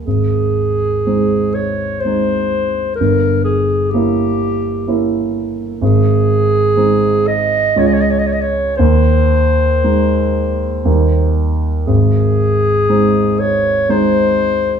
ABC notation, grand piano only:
X:1
M:3/4
L:1/8
Q:1/4=60
K:Ab
V:1 name="Grand piano"
A,,,2 [A,CE]2 [A,CE]2 | G,,,2 [B,D=E]2 [B,DE]2 | A,,,2 [A,CE]2 [D,,A,DF]2 | E,,2 [A,E]2 [E,,G,B,E]2 |
A,,,2 [A,CE]2 [A,CE]2 |]